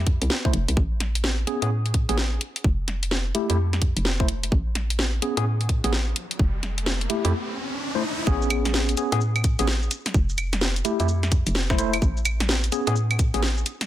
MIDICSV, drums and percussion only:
0, 0, Header, 1, 2, 480
1, 0, Start_track
1, 0, Tempo, 468750
1, 788, Time_signature, 4, 2, 24, 8
1, 14199, End_track
2, 0, Start_track
2, 0, Title_t, "Drums"
2, 67, Note_on_c, 9, 36, 110
2, 67, Note_on_c, 9, 42, 98
2, 170, Note_off_c, 9, 36, 0
2, 170, Note_off_c, 9, 42, 0
2, 221, Note_on_c, 9, 42, 63
2, 308, Note_on_c, 9, 38, 118
2, 323, Note_off_c, 9, 42, 0
2, 410, Note_off_c, 9, 38, 0
2, 461, Note_on_c, 9, 36, 104
2, 548, Note_on_c, 9, 42, 97
2, 563, Note_off_c, 9, 36, 0
2, 650, Note_off_c, 9, 42, 0
2, 701, Note_on_c, 9, 42, 61
2, 787, Note_on_c, 9, 36, 117
2, 803, Note_off_c, 9, 42, 0
2, 890, Note_off_c, 9, 36, 0
2, 1028, Note_on_c, 9, 40, 48
2, 1028, Note_on_c, 9, 42, 99
2, 1131, Note_off_c, 9, 40, 0
2, 1131, Note_off_c, 9, 42, 0
2, 1181, Note_on_c, 9, 42, 62
2, 1268, Note_on_c, 9, 38, 117
2, 1284, Note_off_c, 9, 42, 0
2, 1370, Note_off_c, 9, 38, 0
2, 1508, Note_on_c, 9, 42, 97
2, 1610, Note_off_c, 9, 42, 0
2, 1661, Note_on_c, 9, 42, 61
2, 1763, Note_off_c, 9, 42, 0
2, 1901, Note_on_c, 9, 42, 34
2, 1987, Note_off_c, 9, 42, 0
2, 1987, Note_on_c, 9, 42, 94
2, 1988, Note_on_c, 9, 36, 99
2, 2090, Note_off_c, 9, 36, 0
2, 2090, Note_off_c, 9, 42, 0
2, 2141, Note_on_c, 9, 42, 66
2, 2228, Note_on_c, 9, 38, 113
2, 2243, Note_off_c, 9, 42, 0
2, 2330, Note_off_c, 9, 38, 0
2, 2467, Note_on_c, 9, 42, 96
2, 2570, Note_off_c, 9, 42, 0
2, 2621, Note_on_c, 9, 42, 62
2, 2708, Note_on_c, 9, 36, 117
2, 2724, Note_off_c, 9, 42, 0
2, 2810, Note_off_c, 9, 36, 0
2, 2947, Note_on_c, 9, 40, 50
2, 2947, Note_on_c, 9, 42, 99
2, 3050, Note_off_c, 9, 40, 0
2, 3050, Note_off_c, 9, 42, 0
2, 3101, Note_on_c, 9, 42, 66
2, 3187, Note_on_c, 9, 38, 103
2, 3203, Note_off_c, 9, 42, 0
2, 3290, Note_off_c, 9, 38, 0
2, 3427, Note_on_c, 9, 42, 98
2, 3530, Note_off_c, 9, 42, 0
2, 3581, Note_on_c, 9, 42, 64
2, 3683, Note_off_c, 9, 42, 0
2, 3821, Note_on_c, 9, 40, 48
2, 3821, Note_on_c, 9, 42, 34
2, 3907, Note_off_c, 9, 42, 0
2, 3907, Note_on_c, 9, 36, 98
2, 3907, Note_on_c, 9, 42, 105
2, 3924, Note_off_c, 9, 40, 0
2, 4010, Note_off_c, 9, 36, 0
2, 4010, Note_off_c, 9, 42, 0
2, 4061, Note_on_c, 9, 42, 68
2, 4147, Note_on_c, 9, 38, 108
2, 4163, Note_off_c, 9, 42, 0
2, 4250, Note_off_c, 9, 38, 0
2, 4301, Note_on_c, 9, 36, 101
2, 4388, Note_on_c, 9, 42, 105
2, 4403, Note_off_c, 9, 36, 0
2, 4490, Note_off_c, 9, 42, 0
2, 4541, Note_on_c, 9, 42, 65
2, 4627, Note_on_c, 9, 36, 112
2, 4643, Note_off_c, 9, 42, 0
2, 4730, Note_off_c, 9, 36, 0
2, 4868, Note_on_c, 9, 40, 52
2, 4868, Note_on_c, 9, 42, 105
2, 4970, Note_off_c, 9, 40, 0
2, 4970, Note_off_c, 9, 42, 0
2, 5021, Note_on_c, 9, 42, 64
2, 5108, Note_on_c, 9, 38, 112
2, 5124, Note_off_c, 9, 42, 0
2, 5210, Note_off_c, 9, 38, 0
2, 5348, Note_on_c, 9, 42, 104
2, 5450, Note_off_c, 9, 42, 0
2, 5501, Note_on_c, 9, 42, 66
2, 5603, Note_off_c, 9, 42, 0
2, 5741, Note_on_c, 9, 42, 35
2, 5828, Note_off_c, 9, 42, 0
2, 5828, Note_on_c, 9, 36, 100
2, 5828, Note_on_c, 9, 42, 105
2, 5930, Note_off_c, 9, 36, 0
2, 5931, Note_off_c, 9, 42, 0
2, 5981, Note_on_c, 9, 42, 70
2, 6068, Note_on_c, 9, 38, 103
2, 6084, Note_off_c, 9, 42, 0
2, 6171, Note_off_c, 9, 38, 0
2, 6308, Note_on_c, 9, 42, 114
2, 6410, Note_off_c, 9, 42, 0
2, 6461, Note_on_c, 9, 42, 66
2, 6548, Note_on_c, 9, 36, 119
2, 6564, Note_off_c, 9, 42, 0
2, 6650, Note_off_c, 9, 36, 0
2, 6789, Note_on_c, 9, 40, 56
2, 6789, Note_on_c, 9, 42, 109
2, 6891, Note_off_c, 9, 40, 0
2, 6891, Note_off_c, 9, 42, 0
2, 6941, Note_on_c, 9, 42, 63
2, 7028, Note_on_c, 9, 38, 106
2, 7044, Note_off_c, 9, 42, 0
2, 7130, Note_off_c, 9, 38, 0
2, 7181, Note_on_c, 9, 42, 38
2, 7268, Note_off_c, 9, 42, 0
2, 7268, Note_on_c, 9, 42, 106
2, 7370, Note_off_c, 9, 42, 0
2, 7421, Note_on_c, 9, 42, 67
2, 7524, Note_off_c, 9, 42, 0
2, 8468, Note_on_c, 9, 36, 124
2, 8469, Note_on_c, 9, 82, 40
2, 8570, Note_off_c, 9, 36, 0
2, 8571, Note_off_c, 9, 82, 0
2, 8622, Note_on_c, 9, 82, 20
2, 8708, Note_off_c, 9, 82, 0
2, 8708, Note_on_c, 9, 42, 110
2, 8708, Note_on_c, 9, 75, 76
2, 8708, Note_on_c, 9, 82, 69
2, 8811, Note_off_c, 9, 42, 0
2, 8811, Note_off_c, 9, 75, 0
2, 8811, Note_off_c, 9, 82, 0
2, 8862, Note_on_c, 9, 40, 72
2, 8862, Note_on_c, 9, 42, 62
2, 8862, Note_on_c, 9, 82, 30
2, 8949, Note_off_c, 9, 82, 0
2, 8949, Note_on_c, 9, 38, 118
2, 8949, Note_on_c, 9, 82, 41
2, 8964, Note_off_c, 9, 40, 0
2, 8964, Note_off_c, 9, 42, 0
2, 9051, Note_off_c, 9, 38, 0
2, 9051, Note_off_c, 9, 82, 0
2, 9102, Note_on_c, 9, 42, 40
2, 9102, Note_on_c, 9, 82, 20
2, 9188, Note_off_c, 9, 42, 0
2, 9188, Note_off_c, 9, 82, 0
2, 9188, Note_on_c, 9, 42, 104
2, 9188, Note_on_c, 9, 82, 70
2, 9291, Note_off_c, 9, 42, 0
2, 9291, Note_off_c, 9, 82, 0
2, 9341, Note_on_c, 9, 42, 66
2, 9341, Note_on_c, 9, 82, 29
2, 9428, Note_off_c, 9, 82, 0
2, 9428, Note_on_c, 9, 82, 41
2, 9444, Note_off_c, 9, 42, 0
2, 9531, Note_off_c, 9, 82, 0
2, 9581, Note_on_c, 9, 42, 34
2, 9581, Note_on_c, 9, 75, 75
2, 9581, Note_on_c, 9, 82, 19
2, 9668, Note_off_c, 9, 42, 0
2, 9668, Note_off_c, 9, 82, 0
2, 9668, Note_on_c, 9, 36, 108
2, 9668, Note_on_c, 9, 42, 112
2, 9668, Note_on_c, 9, 82, 67
2, 9683, Note_off_c, 9, 75, 0
2, 9770, Note_off_c, 9, 36, 0
2, 9770, Note_off_c, 9, 42, 0
2, 9770, Note_off_c, 9, 82, 0
2, 9821, Note_on_c, 9, 42, 70
2, 9821, Note_on_c, 9, 82, 31
2, 9907, Note_off_c, 9, 82, 0
2, 9907, Note_on_c, 9, 38, 117
2, 9907, Note_on_c, 9, 82, 38
2, 9923, Note_off_c, 9, 42, 0
2, 10010, Note_off_c, 9, 38, 0
2, 10010, Note_off_c, 9, 82, 0
2, 10061, Note_on_c, 9, 82, 20
2, 10148, Note_off_c, 9, 82, 0
2, 10148, Note_on_c, 9, 42, 115
2, 10148, Note_on_c, 9, 82, 70
2, 10250, Note_off_c, 9, 42, 0
2, 10250, Note_off_c, 9, 82, 0
2, 10301, Note_on_c, 9, 40, 54
2, 10301, Note_on_c, 9, 42, 67
2, 10301, Note_on_c, 9, 82, 29
2, 10387, Note_off_c, 9, 82, 0
2, 10387, Note_on_c, 9, 82, 38
2, 10388, Note_on_c, 9, 36, 127
2, 10403, Note_off_c, 9, 40, 0
2, 10403, Note_off_c, 9, 42, 0
2, 10490, Note_off_c, 9, 36, 0
2, 10490, Note_off_c, 9, 82, 0
2, 10541, Note_on_c, 9, 82, 20
2, 10628, Note_off_c, 9, 82, 0
2, 10628, Note_on_c, 9, 42, 104
2, 10628, Note_on_c, 9, 75, 79
2, 10628, Note_on_c, 9, 82, 71
2, 10730, Note_off_c, 9, 42, 0
2, 10730, Note_off_c, 9, 75, 0
2, 10730, Note_off_c, 9, 82, 0
2, 10782, Note_on_c, 9, 40, 67
2, 10782, Note_on_c, 9, 42, 66
2, 10782, Note_on_c, 9, 82, 31
2, 10868, Note_off_c, 9, 82, 0
2, 10868, Note_on_c, 9, 38, 118
2, 10868, Note_on_c, 9, 82, 39
2, 10884, Note_off_c, 9, 40, 0
2, 10884, Note_off_c, 9, 42, 0
2, 10971, Note_off_c, 9, 38, 0
2, 10971, Note_off_c, 9, 82, 0
2, 11022, Note_on_c, 9, 42, 38
2, 11022, Note_on_c, 9, 82, 20
2, 11109, Note_off_c, 9, 42, 0
2, 11109, Note_off_c, 9, 82, 0
2, 11109, Note_on_c, 9, 42, 106
2, 11109, Note_on_c, 9, 82, 69
2, 11211, Note_off_c, 9, 42, 0
2, 11211, Note_off_c, 9, 82, 0
2, 11262, Note_on_c, 9, 42, 62
2, 11262, Note_on_c, 9, 82, 29
2, 11348, Note_off_c, 9, 82, 0
2, 11348, Note_on_c, 9, 82, 41
2, 11364, Note_off_c, 9, 42, 0
2, 11451, Note_off_c, 9, 82, 0
2, 11501, Note_on_c, 9, 40, 53
2, 11501, Note_on_c, 9, 42, 34
2, 11501, Note_on_c, 9, 82, 20
2, 11588, Note_off_c, 9, 42, 0
2, 11588, Note_off_c, 9, 82, 0
2, 11588, Note_on_c, 9, 36, 114
2, 11588, Note_on_c, 9, 42, 108
2, 11588, Note_on_c, 9, 82, 68
2, 11604, Note_off_c, 9, 40, 0
2, 11690, Note_off_c, 9, 36, 0
2, 11691, Note_off_c, 9, 42, 0
2, 11691, Note_off_c, 9, 82, 0
2, 11741, Note_on_c, 9, 42, 66
2, 11741, Note_on_c, 9, 82, 32
2, 11828, Note_off_c, 9, 82, 0
2, 11828, Note_on_c, 9, 38, 122
2, 11828, Note_on_c, 9, 82, 41
2, 11843, Note_off_c, 9, 42, 0
2, 11930, Note_off_c, 9, 38, 0
2, 11930, Note_off_c, 9, 82, 0
2, 11981, Note_on_c, 9, 36, 113
2, 11981, Note_on_c, 9, 40, 72
2, 11981, Note_on_c, 9, 82, 21
2, 12068, Note_off_c, 9, 82, 0
2, 12068, Note_on_c, 9, 42, 106
2, 12068, Note_on_c, 9, 82, 71
2, 12083, Note_off_c, 9, 40, 0
2, 12084, Note_off_c, 9, 36, 0
2, 12170, Note_off_c, 9, 42, 0
2, 12170, Note_off_c, 9, 82, 0
2, 12221, Note_on_c, 9, 42, 64
2, 12221, Note_on_c, 9, 75, 78
2, 12221, Note_on_c, 9, 82, 30
2, 12308, Note_off_c, 9, 82, 0
2, 12308, Note_on_c, 9, 36, 127
2, 12308, Note_on_c, 9, 82, 40
2, 12324, Note_off_c, 9, 42, 0
2, 12324, Note_off_c, 9, 75, 0
2, 12410, Note_off_c, 9, 36, 0
2, 12410, Note_off_c, 9, 82, 0
2, 12461, Note_on_c, 9, 82, 20
2, 12548, Note_off_c, 9, 82, 0
2, 12548, Note_on_c, 9, 42, 99
2, 12548, Note_on_c, 9, 75, 82
2, 12548, Note_on_c, 9, 82, 71
2, 12650, Note_off_c, 9, 42, 0
2, 12650, Note_off_c, 9, 75, 0
2, 12650, Note_off_c, 9, 82, 0
2, 12702, Note_on_c, 9, 40, 65
2, 12702, Note_on_c, 9, 42, 59
2, 12702, Note_on_c, 9, 82, 31
2, 12788, Note_off_c, 9, 82, 0
2, 12788, Note_on_c, 9, 38, 124
2, 12788, Note_on_c, 9, 82, 40
2, 12804, Note_off_c, 9, 40, 0
2, 12804, Note_off_c, 9, 42, 0
2, 12891, Note_off_c, 9, 38, 0
2, 12891, Note_off_c, 9, 82, 0
2, 12941, Note_on_c, 9, 42, 36
2, 12941, Note_on_c, 9, 82, 21
2, 13028, Note_off_c, 9, 42, 0
2, 13028, Note_off_c, 9, 82, 0
2, 13028, Note_on_c, 9, 42, 99
2, 13028, Note_on_c, 9, 82, 70
2, 13130, Note_off_c, 9, 42, 0
2, 13130, Note_off_c, 9, 82, 0
2, 13181, Note_on_c, 9, 42, 61
2, 13181, Note_on_c, 9, 82, 31
2, 13268, Note_off_c, 9, 82, 0
2, 13268, Note_on_c, 9, 82, 41
2, 13284, Note_off_c, 9, 42, 0
2, 13371, Note_off_c, 9, 82, 0
2, 13421, Note_on_c, 9, 42, 35
2, 13421, Note_on_c, 9, 75, 82
2, 13421, Note_on_c, 9, 82, 19
2, 13508, Note_off_c, 9, 42, 0
2, 13508, Note_off_c, 9, 82, 0
2, 13508, Note_on_c, 9, 36, 116
2, 13508, Note_on_c, 9, 42, 99
2, 13508, Note_on_c, 9, 82, 70
2, 13524, Note_off_c, 9, 75, 0
2, 13610, Note_off_c, 9, 36, 0
2, 13610, Note_off_c, 9, 42, 0
2, 13610, Note_off_c, 9, 82, 0
2, 13662, Note_on_c, 9, 42, 66
2, 13662, Note_on_c, 9, 82, 32
2, 13748, Note_off_c, 9, 82, 0
2, 13748, Note_on_c, 9, 38, 121
2, 13748, Note_on_c, 9, 82, 43
2, 13764, Note_off_c, 9, 42, 0
2, 13850, Note_off_c, 9, 38, 0
2, 13850, Note_off_c, 9, 82, 0
2, 13902, Note_on_c, 9, 82, 21
2, 13988, Note_off_c, 9, 82, 0
2, 13988, Note_on_c, 9, 42, 105
2, 13988, Note_on_c, 9, 82, 72
2, 14090, Note_off_c, 9, 42, 0
2, 14090, Note_off_c, 9, 82, 0
2, 14142, Note_on_c, 9, 40, 52
2, 14142, Note_on_c, 9, 42, 62
2, 14142, Note_on_c, 9, 82, 31
2, 14199, Note_off_c, 9, 40, 0
2, 14199, Note_off_c, 9, 42, 0
2, 14199, Note_off_c, 9, 82, 0
2, 14199, End_track
0, 0, End_of_file